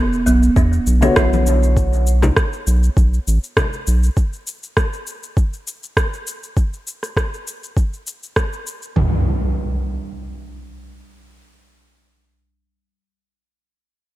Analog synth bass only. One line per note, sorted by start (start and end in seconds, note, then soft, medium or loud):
0.27 0.49 B1 medium
0.57 0.79 E2 medium
0.87 1.09 B1 medium
1.17 2.31 B1 loud
2.67 2.90 B1 medium
2.97 3.19 B1 medium
3.28 3.39 A1 medium
3.88 4.10 B1 medium